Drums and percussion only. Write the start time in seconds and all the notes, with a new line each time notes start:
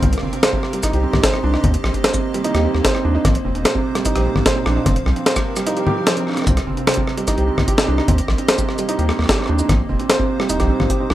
0.03 kick, closed hi-hat, low conga
0.13 closed hi-hat
0.18 cross-stick
0.23 kick
0.33 closed hi-hat
0.43 cross-stick, snare, closed hi-hat
0.53 kick
0.63 cross-stick
0.73 closed hi-hat
0.83 kick, cross-stick, closed hi-hat, shaker
0.93 closed hi-hat
1.13 cross-stick, low conga
1.24 kick, snare, closed hi-hat
1.34 cross-stick
1.54 cross-stick
1.64 kick, closed hi-hat, low conga
1.74 closed hi-hat
1.84 cross-stick
1.94 kick, closed hi-hat
2.04 cross-stick, snare, closed hi-hat
2.14 kick, shaker
2.34 closed hi-hat
2.44 closed hi-hat
2.55 cross-stick, closed hi-hat
2.75 cross-stick
2.85 kick, snare, closed hi-hat
2.95 cross-stick
3.25 kick, cross-stick, closed hi-hat, low conga
3.35 closed hi-hat
3.45 kick
3.48 kick
3.50 kick
3.53 kick
3.55 kick, closed hi-hat
3.58 kick
3.60 kick
3.63 kick, cross-stick, snare, closed hi-hat
3.75 kick
3.95 cross-stick, closed hi-hat
4.05 kick, closed hi-hat, shaker
4.16 cross-stick, closed hi-hat
4.36 cross-stick, low conga
4.46 kick, snare, closed hi-hat
4.66 cross-stick
4.86 kick, cross-stick, closed hi-hat, low conga
4.96 closed hi-hat
5.06 kick, cross-stick
5.09 kick
5.13 kick, closed hi-hat
5.26 snare, closed hi-hat
5.36 kick, cross-stick, shaker
5.57 cross-stick, closed hi-hat, shaker
5.67 closed hi-hat
5.77 closed hi-hat
5.87 low conga
6.07 cross-stick, snare, closed hi-hat
6.17 closed hi-hat
6.27 cross-stick
6.29 cross-stick
6.32 cross-stick
6.35 cross-stick
6.37 cross-stick, closed hi-hat
6.40 cross-stick
6.42 cross-stick
6.45 kick, cross-stick, closed hi-hat, low conga
6.57 cross-stick, closed hi-hat
6.67 kick
6.77 closed hi-hat
6.87 cross-stick, snare, closed hi-hat
6.91 closed hi-hat
6.94 kick, closed hi-hat
7.07 cross-stick
7.18 closed hi-hat
7.28 kick, cross-stick, closed hi-hat, shaker
7.38 closed hi-hat
7.58 cross-stick, low conga
7.68 kick, closed hi-hat
7.78 cross-stick, snare
7.98 cross-stick
8.08 kick, closed hi-hat, low conga
8.18 closed hi-hat
8.28 kick, cross-stick
8.38 closed hi-hat
8.48 cross-stick, snare, closed hi-hat
8.58 kick, shaker
8.69 cross-stick
8.79 closed hi-hat, shaker
8.89 closed hi-hat
8.99 closed hi-hat
9.09 cross-stick
9.19 cross-stick
9.22 cross-stick
9.26 kick, cross-stick
9.29 cross-stick, snare
9.32 cross-stick
9.36 cross-stick
9.39 cross-stick
9.42 cross-stick
9.46 cross-stick
9.59 shaker
9.69 kick, cross-stick, closed hi-hat, low conga
9.89 kick
10.00 closed hi-hat
10.10 cross-stick, snare, closed hi-hat
10.19 kick
10.40 cross-stick
10.50 kick, closed hi-hat, shaker
10.52 kick
10.55 kick
10.57 kick
10.60 kick, cross-stick, closed hi-hat
10.62 kick
10.65 kick
10.67 kick
10.80 cross-stick, low conga
10.90 kick, closed hi-hat
11.10 cross-stick